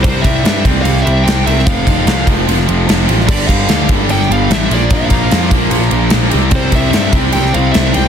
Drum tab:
CC |----------------|----------------|x---------------|----------------|
RD |x-x-x-x-x-x-x-x-|x-x-x-x-x-x-x-x-|--x-x-x-x-x-x-x-|x-x-x-x-x-x-x-x-|
SD |----o----o--o--o|----o----o--o--o|----o----o--o---|----o----o--o---|
BD |o-o---o---------|o-o---o---------|o-o---o---------|o-o---o---------|

CC |----------------|
RD |x-x-x-x-x-x-x-x-|
SD |----o----o--o---|
BD |o-o---o---------|